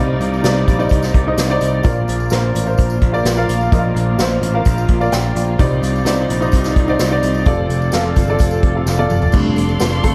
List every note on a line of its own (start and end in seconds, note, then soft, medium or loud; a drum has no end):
0.00 0.16 C2 medium
0.00 1.81 C3 medium
0.00 1.86 C3 medium
0.00 1.81 G3 medium
0.00 1.86 G3 medium
0.00 0.42 D#4 medium
0.00 1.81 D#4 medium
0.00 0.43 C5 medium
0.00 0.44 D5 medium
0.00 1.81 D5 medium
0.00 1.28 D#5 medium
0.00 1.87 F5 medium
0.21 0.40 C2 medium
0.21 closed hi-hat medium
0.21 tambourine soft
0.34 tambourine soft
0.42 0.63 C2 medium
0.42 0.68 D#4 medium
0.42 0.69 C5 medium
0.42 0.69 D5 medium
0.42 snare loud
0.42 closed hi-hat medium
0.42 tambourine medium
0.68 0.87 A#1 medium
0.68 kick medium
0.68 closed hi-hat medium
0.68 tambourine soft
0.79 1.12 D#4 medium
0.79 1.12 C5 medium
0.79 1.13 D5 medium
0.79 tambourine soft
0.89 1.10 C2 medium
0.89 kick medium
0.89 closed hi-hat medium
0.89 tambourine medium
1.03 snare soft
1.03 tambourine soft
1.14 1.33 C2 medium
1.14 kick medium
1.14 closed hi-hat medium
1.27 1.43 D#4 medium
1.27 1.43 C5 medium
1.27 1.43 D#5 medium
1.38 1.57 C2 medium
1.38 snare medium
1.38 closed hi-hat medium
1.38 tambourine medium
1.50 1.74 D#4 medium
1.50 1.75 C5 medium
1.50 1.75 D5 medium
1.61 1.80 C2 medium
1.61 closed hi-hat medium
1.61 tambourine medium
1.83 2.04 A#1 medium
1.83 2.50 A#2 medium
1.83 5.55 F3 medium
1.83 2.51 F3 medium
1.83 5.55 A#3 medium
1.83 2.17 F4 medium
1.83 9.30 F4 medium
1.83 2.17 A#4 medium
1.83 2.18 D5 medium
1.83 kick loud
1.83 closed hi-hat medium
1.83 tambourine soft
2.08 2.28 A#1 medium
2.08 closed hi-hat medium
2.08 tambourine soft
2.20 tambourine soft
2.30 2.51 A#1 loud
2.30 2.56 F4 medium
2.30 2.56 A#4 medium
2.30 2.57 C5 medium
2.30 snare medium
2.30 closed hi-hat medium
2.30 tambourine medium
2.55 2.74 A1 medium
2.55 closed hi-hat medium
2.55 tambourine soft
2.66 2.99 F4 medium
2.66 2.99 A#4 medium
2.66 3.00 C5 medium
2.66 tambourine soft
2.78 2.98 A#1 medium
2.78 kick medium
2.78 closed hi-hat medium
2.78 tambourine medium
2.90 tambourine soft
3.02 3.21 A#1 medium
3.02 kick medium
3.02 closed hi-hat medium
3.12 3.29 F4 medium
3.12 3.30 A#4 medium
3.12 3.30 D5 medium
3.12 tambourine soft
3.25 3.44 A#1 medium
3.25 snare medium
3.25 closed hi-hat medium
3.25 tambourine medium
3.37 3.62 F4 medium
3.37 3.62 A#4 medium
3.37 3.62 F5 medium
3.49 3.68 A#1 medium
3.49 closed hi-hat medium
3.49 tambourine medium
3.61 tambourine soft
3.71 3.91 A#1 medium
3.71 4.38 A#2 medium
3.71 4.38 F3 medium
3.71 4.05 F4 medium
3.71 4.05 A#4 medium
3.71 3.78 D#5 medium
3.71 kick loud
3.71 closed hi-hat medium
3.71 tambourine soft
3.79 4.08 F5 medium
3.95 4.14 A#1 medium
3.95 closed hi-hat medium
3.95 tambourine soft
4.18 4.38 A#1 medium
4.18 4.43 F4 medium
4.18 4.44 A#4 medium
4.18 4.44 C5 medium
4.18 snare medium
4.18 closed hi-hat medium
4.18 tambourine medium
4.42 4.61 A1 medium
4.42 closed hi-hat medium
4.42 tambourine soft
4.54 4.87 F4 medium
4.54 4.87 A#4 medium
4.54 4.88 F5 medium
4.65 4.85 A#1 medium
4.65 kick medium
4.65 closed hi-hat medium
4.65 tambourine medium
4.78 tambourine soft
4.88 5.08 A#1 medium
4.88 kick medium
4.88 closed hi-hat medium
5.00 5.17 F4 medium
5.00 5.17 A#4 medium
5.00 5.13 D5 medium
5.00 tambourine soft
5.12 5.32 A#1 medium
5.12 5.35 G5 medium
5.12 snare medium
5.12 closed hi-hat medium
5.12 tambourine medium
5.35 5.55 A#1 medium
5.35 5.59 D5 soft
5.35 5.81 F5 medium
5.35 closed hi-hat medium
5.35 tambourine medium
5.59 5.78 C2 medium
5.59 7.45 C3 medium
5.59 6.26 C3 medium
5.59 6.26 G3 medium
5.59 9.30 C4 medium
5.59 5.92 D#4 medium
5.59 7.45 D#4 medium
5.59 5.93 C5 medium
5.59 5.93 D5 medium
5.59 kick loud
5.59 closed hi-hat medium
5.59 tambourine soft
5.82 6.01 C2 medium
5.82 closed hi-hat medium
5.82 tambourine soft
5.96 tambourine soft
6.05 6.25 C2 loud
6.05 6.31 D#4 medium
6.05 6.31 C5 medium
6.05 6.31 D5 medium
6.05 snare medium
6.05 closed hi-hat medium
6.05 tambourine medium
6.29 6.49 A#1 medium
6.29 closed hi-hat medium
6.29 tambourine soft
6.41 6.74 D#4 medium
6.41 6.74 C5 medium
6.41 6.75 D#5 medium
6.41 tambourine soft
6.52 6.72 C2 medium
6.52 kick medium
6.52 closed hi-hat medium
6.52 tambourine medium
6.64 snare soft
6.64 tambourine medium
6.76 6.95 C2 medium
6.76 kick medium
6.76 closed hi-hat medium
6.88 7.04 D#4 medium
6.88 7.05 C5 medium
6.88 7.05 D5 medium
6.88 tambourine soft
6.99 7.19 C2 medium
6.99 snare medium
6.99 closed hi-hat medium
6.99 tambourine medium
7.11 7.36 D#4 medium
7.11 7.36 C5 medium
7.11 7.37 D5 medium
7.23 7.42 C2 medium
7.23 closed hi-hat medium
7.23 tambourine medium
7.34 tambourine soft
7.46 7.66 F1 medium
7.46 8.12 C3 medium
7.46 9.32 F3 medium
7.46 7.79 F4 medium
7.46 9.32 A4 medium
7.46 7.80 A4 medium
7.46 7.80 D5 medium
7.46 kick loud
7.46 closed hi-hat medium
7.46 tambourine soft
7.70 7.89 F1 medium
7.70 closed hi-hat medium
7.70 tambourine soft
7.82 tambourine soft
7.92 8.12 F1 medium
7.92 8.18 F4 medium
7.92 8.18 A4 medium
7.92 8.19 F5 medium
7.92 snare medium
7.92 closed hi-hat medium
7.92 tambourine medium
8.16 8.36 G1 medium
8.16 kick medium
8.16 closed hi-hat medium
8.16 tambourine soft
8.27 8.62 F4 medium
8.27 8.62 A4 medium
8.27 8.62 D5 medium
8.27 tambourine soft
8.39 8.59 F1 medium
8.39 kick medium
8.39 closed hi-hat medium
8.39 tambourine medium
8.51 tambourine soft
8.63 8.82 F1 medium
8.63 kick medium
8.63 closed hi-hat medium
8.75 8.92 F4 medium
8.75 8.92 A4 medium
8.75 8.93 F5 medium
8.86 9.06 F1 medium
8.86 snare soft
8.86 tambourine medium
8.98 9.23 F4 medium
8.98 9.23 A4 medium
8.98 9.24 D5 medium
8.98 high tom medium
9.10 9.29 F1 medium
9.10 mid tom medium
9.10 tambourine medium
9.22 floor tom medium
9.22 tambourine soft
9.32 9.53 F1 loud
9.32 9.56 F3 medium
9.32 10.00 G3 medium
9.32 10.00 A3 soft
9.32 9.57 C4 medium
9.32 10.00 D4 medium
9.32 9.56 D4 medium
9.32 10.15 A4 medium
9.32 9.55 A4 medium
9.32 10.15 D5 medium
9.32 10.15 F5 medium
9.32 10.15 C6 medium
9.32 kick loud
9.32 crash loud
9.32 tambourine soft
9.56 9.76 F1 medium
9.56 9.79 C4 soft
9.56 9.80 D4 soft
9.56 9.80 A4 medium
9.56 closed hi-hat medium
9.56 tambourine soft
9.69 tambourine soft
9.79 10.00 F1 medium
9.79 10.03 F3 medium
9.79 10.04 C4 medium
9.79 10.03 D4 medium
9.79 10.02 A4 medium
9.79 snare medium
9.79 closed hi-hat medium
9.79 tambourine medium
10.03 10.15 G1 medium
10.03 10.15 A3 medium
10.03 10.15 C4 medium
10.03 10.15 D4 medium
10.03 10.15 A4 medium
10.03 kick medium
10.03 closed hi-hat medium
10.03 tambourine soft